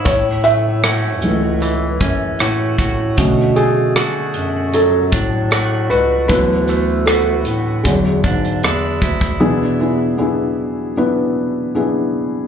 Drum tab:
HH |x-x-x-x-x-x-x-x-|x-x-x-x-x-x-x-x-|x-x-x-x-x-xxx-x-|----------------|
SD |----r-------r---|----r-------r---|--r-r-------r---|----------------|
BD |o---------o---o-|o---------o-----|o-------o-o---oo|----------------|